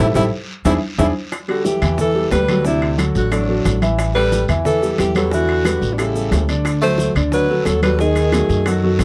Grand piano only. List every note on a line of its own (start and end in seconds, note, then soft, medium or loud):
0.14 0.26 E4 loud
0.14 0.25 G4 loud
0.14 0.25 A4 loud
0.65 0.76 D4 loud
0.65 0.76 E4 loud
0.65 0.76 G#4 loud
0.98 1.09 D4 loud
0.98 1.09 E4 loud
0.98 1.09 G#4 loud
1.48 1.76 G3 medium
1.48 1.76 G4 medium
1.48 1.76 A4 medium
1.82 2.09 E3 medium
1.82 2.09 E4 medium
1.82 2.09 E5 medium
2.15 2.42 G3 medium
2.15 2.43 G4 medium
2.15 2.43 A4 medium
2.49 2.62 F#3 medium
2.49 2.63 F#4 medium
2.49 2.63 A4 medium
2.65 2.93 D3 medium
2.65 2.93 D4 medium
2.65 2.93 D5 medium
2.98 3.26 F#3 medium
2.98 3.26 F#4 medium
2.98 3.26 A4 medium
3.31 3.45 F#3 medium
3.31 3.46 F#4 medium
3.31 3.46 A4 medium
3.48 3.76 F#3 medium
3.48 3.76 F#4 medium
3.48 3.76 A4 medium
3.82 4.09 E3 medium
3.82 4.10 E4 medium
3.82 4.10 E5 medium
4.16 4.43 G3 medium
4.16 4.43 G4 medium
4.16 4.43 A4 medium
4.49 4.76 E3 medium
4.49 4.76 E4 medium
4.49 4.77 E5 medium
4.82 5.10 G3 medium
4.82 5.10 G4 medium
4.82 5.10 A4 medium
5.15 5.29 G3 medium
5.15 5.29 G4 medium
5.15 5.29 B4 medium
5.33 5.60 E3 medium
5.33 5.60 E4 medium
5.33 5.60 E5 medium
5.65 5.93 G3 medium
5.65 5.93 G4 medium
5.65 5.93 B4 medium
5.99 6.13 G3 medium
5.99 6.13 G4 medium
5.99 6.13 A4 medium
6.15 6.43 G3 medium
6.15 6.43 G4 medium
6.15 6.43 A4 medium
6.49 6.76 D3 medium
6.49 6.77 D4 medium
6.49 6.77 D5 medium
6.82 7.10 F#3 medium
6.82 7.10 F#4 medium
6.82 7.10 A4 medium
7.16 7.43 D3 medium
7.16 7.44 D4 medium
7.16 7.44 D5 medium
7.50 7.77 F#3 medium
7.50 7.77 F#4 medium
7.50 7.77 A4 medium
7.83 7.96 F#3 medium
7.83 7.97 F#4 medium
7.83 7.97 A4 medium
8.00 8.27 D#3 medium
8.00 8.27 D#4 medium
8.00 8.27 D#5 medium
8.33 8.60 F#3 medium
8.33 8.61 A3 medium
8.33 8.61 F#4 medium
8.66 8.80 F#3 medium
8.66 8.80 F#4 medium
8.66 8.80 A4 medium
8.83 9.04 F#3 medium
8.83 9.04 F#4 medium
8.83 9.04 A4 medium